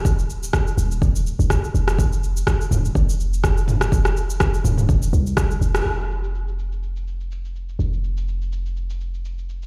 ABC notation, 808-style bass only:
X:1
M:4/4
L:1/16
Q:"Swing 16ths" 1/4=124
K:Ebdor
V:1 name="808-style bass" clef=bass
E,,,6 E,,,4- E,,, F,,,3 F,,,2- | F,,,4 z2 E,,,2 F,,,8- | F,,,6 E,,,4 C,,4 F,,,2 | F,,,16 |
F,,,16 |]